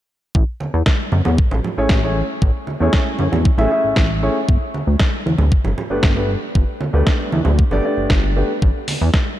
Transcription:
0.35 analog synth bass A1, kick
0.60 high conga
0.74 analog synth bass E2
0.86 kick, snare
1.12 analog synth bass F#2, high conga
1.25 analog synth bass E2, low conga
1.38 analog synth bass A1, kick
1.51 analog synth bass A1, low conga
1.64 low conga
1.77 analog synth bass A1, grand piano A3 C#4 E4 G#4 C#5
1.89 analog synth bass A1, kick, snare
2.03 grand piano A3 C#4 E4 G#4 C#5
2.42 analog synth bass A1, kick
2.67 high conga
2.80 analog synth bass E2, grand piano A3 C#4 E4 G#4 C#5
2.93 kick, snare
3.19 analog synth bass F#2, high conga
3.32 analog synth bass E2, low conga
3.45 kick
3.58 analog synth bass A1, grand piano A3 C#4 E4 G#4 E5, low conga
3.70 grand piano A3 C#4 E4 G#4 E5
3.84 analog synth bass A1
3.96 analog synth bass A1, kick, snare
4.22 grand piano A3 C#4 E4 G#4 C#5
4.49 analog synth bass G1, kick
4.74 high conga
4.87 analog synth bass D2
5.00 kick, snare
5.26 analog synth bass E2, high conga
5.38 analog synth bass D2, low conga
5.52 analog synth bass G1, kick
5.64 analog synth bass G1, low conga
5.78 low conga
5.90 analog synth bass G1, grand piano A3 B3 D4 G4 B4
6.03 analog synth bass G1, kick, snare
6.16 grand piano A3 B3 D4 G4 B4
6.55 analog synth bass G1, kick
6.81 high conga
6.93 analog synth bass D2, grand piano A3 B3 D4 G4 B4
7.07 kick, snare
7.32 analog synth bass E2, high conga
7.45 analog synth bass D2, low conga
7.59 kick
7.71 analog synth bass G1, grand piano A3 B3 D4 G4 D5, low conga
7.84 grand piano A3 B3 D4 G4 D5
7.97 analog synth bass G1
8.10 analog synth bass G1, kick, snare
8.36 grand piano A3 B3 D4 G4 B4
8.62 analog synth bass A1, kick
8.88 open hi-hat, high conga
9.01 analog synth bass E2
9.14 kick, snare

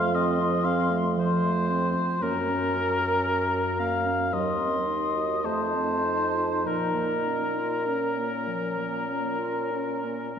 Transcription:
Already playing: bassoon F2, french horn F3, clarinet A3, oboe F5, flute C6
0.13 clarinet C4, oboe D#5
0.40 clarinet F4
0.65 clarinet C4, oboe F5
0.90 clarinet A3
1.17 clarinet F3, oboe C5
1.44 clarinet A3
1.70 clarinet C4
1.96 clarinet F4
2.22 bassoon F#2, clarinet A#3, french horn C#4, oboe A#4, flute A#5
2.49 clarinet C#4
2.75 clarinet F#4
3.02 clarinet A#4
3.27 clarinet F#4
3.54 clarinet C#4
3.79 clarinet A#3, oboe F5
4.06 clarinet C#4
4.32 bassoon D#2, clarinet F#3, french horn D#4, oboe D#5, flute C6
4.58 clarinet C4
4.87 clarinet D#4
5.14 clarinet F#4
5.43 bassoon F2, clarinet A3, oboe C5, flute A5
5.74 clarinet C4
6.03 clarinet D#4
6.34 clarinet F4
6.64 bassoon A#2, clarinet F3, oboe A#4, flute A#5
6.94 clarinet A#3
7.27 clarinet C#4
7.56 clarinet F4
7.87 clarinet C#4, french horn C#4
8.18 clarinet A#3
8.47 clarinet F3
8.78 clarinet A#3
9.09 clarinet C#4
9.38 clarinet F4
9.71 clarinet C#4
10.04 clarinet A#3

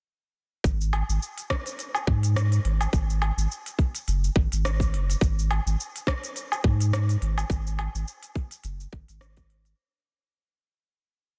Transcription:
0.64 sub bass G#1, kick, open hi-hat, shaker
0.81 shaker
0.93 open hi-hat, low woodblock
1.09 sub bass G#1, shaker
1.23 shaker
1.38 open hi-hat, shaker
1.50 kick, cross-stick, open hi-hat
1.66 open hi-hat, shaker
1.79 open hi-hat, shaker
1.95 low woodblock, shaker
2.07 sub bass G#2, kick
2.23 open hi-hat, shaker
2.36 cross-stick, open hi-hat, shaker
2.52 open hi-hat, shaker
2.65 sub bass G#1, open hi-hat
2.81 open hi-hat, low woodblock, shaker
2.93 sub bass G#1, kick, open hi-hat, shaker
3.10 shaker
3.22 open hi-hat, low woodblock
3.37 sub bass G#1, shaker
3.52 shaker
3.66 open hi-hat, shaker
3.79 kick, open hi-hat
3.95 open hi-hat, shaker
4.08 sub bass F#1, open hi-hat, shaker
4.24 shaker
4.36 sub bass G#1, kick
4.52 sub bass G#1, open hi-hat, shaker
4.65 cross-stick, open hi-hat, shaker
4.80 kick, open hi-hat, shaker
4.93 sub bass F#1, open hi-hat
5.10 open hi-hat, shaker
5.21 sub bass G#1, kick, open hi-hat, shaker
5.39 shaker
5.51 open hi-hat, low woodblock
5.66 sub bass G#1, shaker
5.80 shaker
5.96 open hi-hat, shaker
6.07 kick, cross-stick, open hi-hat
6.23 open hi-hat, shaker
6.36 open hi-hat, shaker
6.52 low woodblock, shaker
6.64 sub bass G#2, kick
6.80 open hi-hat, shaker
6.93 cross-stick, open hi-hat, shaker
7.09 open hi-hat, shaker
7.22 sub bass G#1, open hi-hat
7.38 open hi-hat, low woodblock, shaker
7.50 sub bass G#1, kick, open hi-hat, shaker
7.67 shaker
7.79 open hi-hat, low woodblock
7.95 sub bass G#1, shaker
8.08 shaker
8.23 open hi-hat, shaker
8.35 kick, open hi-hat
8.51 open hi-hat, shaker
8.64 sub bass F#1, open hi-hat, shaker
8.80 shaker
8.92 sub bass G#1, kick, open hi-hat
9.08 sub bass G#1, open hi-hat, shaker
9.21 cross-stick, open hi-hat, shaker
9.37 sub bass G#1, kick, open hi-hat, shaker
9.50 open hi-hat
9.65 open hi-hat, shaker

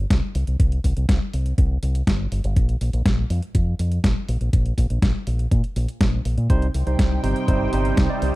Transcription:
0.10 fingered electric bass C2, kick, snare, closed hi-hat
0.35 fingered electric bass C2, open hi-hat
0.47 fingered electric bass C2, closed hi-hat
0.60 fingered electric bass C2, kick, closed hi-hat
0.72 closed hi-hat
0.84 fingered electric bass C2, kick, open hi-hat
0.97 fingered electric bass C2, closed hi-hat
1.09 fingered electric bass C2, kick, snare, closed hi-hat
1.33 fingered electric bass C2, open hi-hat
1.46 closed hi-hat
1.58 fingered electric bass C2, kick, closed hi-hat
1.83 fingered electric bass C2, open hi-hat
1.95 closed hi-hat
2.07 fingered electric bass G1, kick, snare, closed hi-hat
2.32 fingered electric bass G1, open hi-hat
2.44 fingered electric bass G1, closed hi-hat
2.56 fingered electric bass A#1, kick, closed hi-hat
2.69 closed hi-hat
2.81 fingered electric bass A#1, open hi-hat
2.93 fingered electric bass A#1, closed hi-hat
3.06 fingered electric bass A#1, kick, snare, closed hi-hat
3.30 fingered electric bass F2, open hi-hat
3.43 closed hi-hat
3.55 fingered electric bass F2, kick, closed hi-hat
3.79 fingered electric bass F2, open hi-hat
3.92 closed hi-hat
4.04 fingered electric bass A#1, kick, snare, closed hi-hat
4.29 fingered electric bass A#1, open hi-hat
4.41 fingered electric bass A#1, closed hi-hat
4.53 fingered electric bass A#1, kick, closed hi-hat
4.66 closed hi-hat
4.78 fingered electric bass A#1, kick, open hi-hat
4.90 fingered electric bass A#1, closed hi-hat
5.02 fingered electric bass A#1, kick, snare, closed hi-hat
5.27 fingered electric bass A#1, open hi-hat
5.39 closed hi-hat
5.51 fingered electric bass A#2, kick, closed hi-hat
5.64 closed hi-hat
5.76 fingered electric bass A#1, open hi-hat
5.88 closed hi-hat
6.01 fingered electric bass A#1, kick, snare, closed hi-hat
6.25 fingered electric bass A#1, open hi-hat
6.38 fingered electric bass A#2, closed hi-hat
6.50 fingered electric bass C2, tine electric piano C3 G3 C4 D#4 C5, analog synth pad G3 D#4 C5 G5, kick, closed hi-hat
6.62 closed hi-hat
6.74 fingered electric bass C2, open hi-hat
6.87 fingered electric bass C2, tine electric piano C3 G3 C4 D#4 C5, closed hi-hat
6.99 fingered electric bass C2, kick, snare, closed hi-hat
7.24 fingered electric bass G1, tine electric piano C3 G3 C4 D#4 C5, open hi-hat
7.36 closed hi-hat
7.48 fingered electric bass G1, tine electric piano C3 G3 C4 D#4 C5, kick, closed hi-hat
7.73 fingered electric bass G1, tine electric piano C3 G3 C4 D#4 C5, open hi-hat
7.85 closed hi-hat
7.97 fingered electric bass C2, kick, snare, closed hi-hat
8.10 tine electric piano C3 G3 C4 D#4 D5
8.22 fingered electric bass C2, open hi-hat

